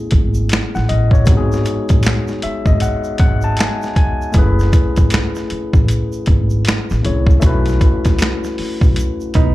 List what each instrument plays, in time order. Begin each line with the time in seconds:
Already playing: tine electric piano A3 B3 C#4 E4 G#4
0.11 upright bass G#1, kick, closed hi-hat
0.34 shaker
0.49 finger snap, snare, closed hi-hat, shaker
0.75 upright bass A1, tine electric piano F#5, snare, shaker
0.89 upright bass A1, tine electric piano D#5, closed hi-hat
1.11 tine electric piano C#5, kick, shaker
1.25 upright bass G#1, tine electric piano G#3 B3 D#4, kick, closed hi-hat, shaker
1.29 tine electric piano F#4 G4
1.37 tine electric piano G#4
1.52 snare, shaker
1.65 closed hi-hat, shaker
1.89 upright bass A1, kick, closed hi-hat, shaker
2.03 finger snap, snare, closed hi-hat, shaker
2.07 finger snap
2.27 snare, shaker
2.42 tine electric piano E5, muted upright bass stroke, closed hi-hat
2.66 upright bass G#1, tine electric piano D#5, kick, shaker
2.80 tine electric piano F#5, closed hi-hat, shaker
3.04 shaker
3.18 upright bass G#1, tine electric piano F#5, kick, closed hi-hat
3.41 tine electric piano A5, shaker
3.57 tine electric piano G#5, finger snap, snare, closed hi-hat, shaker
3.61 finger snap
3.82 snare, shaker
3.96 tine electric piano G#5, kick, closed hi-hat
4.22 shaker
4.32 upright bass F#1, tine electric piano A3 C#4 E4, kick, closed hi-hat, shaker
4.37 tine electric piano G#4 B4
4.59 snare, shaker
4.73 kick, closed hi-hat, shaker
4.96 upright bass G#1, kick, closed hi-hat, shaker
5.10 finger snap, snare, closed hi-hat, shaker
5.14 finger snap
5.35 snare, shaker
5.50 muted upright bass stroke, closed hi-hat
5.73 upright bass A1, kick, shaker
5.88 closed hi-hat, shaker
6.12 shaker
6.26 upright bass G#1, kick, closed hi-hat
6.50 shaker
6.65 finger snap, snare, closed hi-hat, shaker
6.90 upright bass A1, snare, shaker
7.03 upright bass C2, tine electric piano A3 C#4 E4 G#4 C#5, closed hi-hat
7.27 kick, shaker
7.40 upright bass B1, tine electric piano A3 C#4 D#4, kick, closed hi-hat, shaker
7.44 tine electric piano F#4 B4
7.49 tine electric piano E4
7.66 closed hi-hat, shaker
7.70 snare
7.81 kick, closed hi-hat, shaker
8.05 upright bass C#2, kick, snare, closed hi-hat, shaker
8.19 finger snap, snare, closed hi-hat, shaker
8.22 finger snap
8.44 snare, shaker
8.58 muted upright bass stroke, open hi-hat
8.81 upright bass B1, kick, shaker
8.96 closed hi-hat, shaker
9.21 shaker
9.34 upright bass B1, hollow-body jazz guitar B3 D#4, kick, closed hi-hat